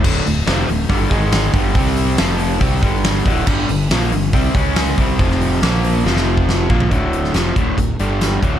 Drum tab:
CC |x---------------|----------------|x---------------|----------------|
HH |--o-o-o-o-o-o-o-|o-o-o-o-o-o-o-o-|--o-o-o-o-o-o-o-|o-o-o-o---------|
SD |----o-------o---|-o--o-------o---|----o-------o---|-o--o---oo--o---|
FT |----------------|----------------|----------------|---------------o|
BD |o-------o-o---o-|o-------o-o---o-|o-------o-o---o-|o----------o--o-|

CC |----------------|
HH |x-x-x-x-x-x-x-x-|
SD |---oo-------o---|
FT |----------------|
BD |o-----o-o-----o-|